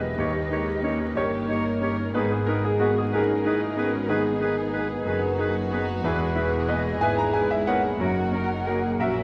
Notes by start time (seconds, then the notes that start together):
Already playing: E1 E2 G#2 F#3 B3 D#4 G4 G#4 A#4 B4 D#5 E5
0.18 D#2 D#3 G3 D#4 G4 C#5
0.51 D#3 G#3 D#4 G4 C#5
0.83 D#3 A#3 C#4 G4 C#5
1.15 G1 G2 D#3 G4 A#4 C#5
1.48 D#3 D#4 G4 A#4 C#5
1.81 D#3 C#4 G4 A#4 C#5
2.14 G#1 G#2 D#3 B3 D#4 G#4 B4
2.31 G#4
2.47 D#3 D#4 G#4 A#4 B4
2.64 G#4
2.80 D#3 B3 F#4 G#4 B4
2.98 G#4
3.12 D#3 C#4 D#4 G#4 A#4 B4
3.45 D#3 D#4 E4 G#4 B4
3.77 D#3 B3 C#4 F#4 G#4 B4
4.08 D#3 B3 D#4 G#4 B4
4.40 D#3 D#4 G#4 A#4 B4
4.73 D#3 B3 G#4 B4
5.05 F#1 F#2 D#3 A#3 D#4 F#4 G#4 B4
5.38 D#3 C#4 D#4 G#4 B4
5.71 D#3 B3 D#4 G#4 B4
6.04 E1 E2 E3 G#3 E4 G#4 B4
6.36 E3 E4 G#4 B4
6.67 E3 B3 G#4 B4 D#5
7.01 G#1 G#2 E3 G#3 E4 G#4 B4 E5 G#5
7.17 A#5
7.33 E3 E4 G#4 B4 G#5
7.51 E5
7.67 E3 B3 G#4 A#4 B4 C#5 F#5
7.99 F#1 F#2 F#3 A#3 D#4 F#4 A#4
8.32 F#3 C#4 F#4 A#4
8.66 F#3 A#3 F#4 G#4 A#4
8.99 A#1 A#2 F#3 C#4 F#4 A#4 E5